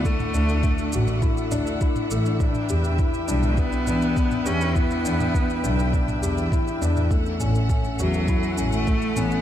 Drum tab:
SH |xxxxxxxxxxxxxxxx|xxxxxxxxxxxxxxxx|xxxxxxxxxxxxxxxx|xxxxxxxxxxxxxxxx|
T2 |-o--o--o--o--o--|-o--o--o--o--o--|o--o--o--o--o--o|--o--o--o--o--o-|
BD |o---o---o---o---|o---o---o---o---|o---o---o---o---|o---o---o---o---|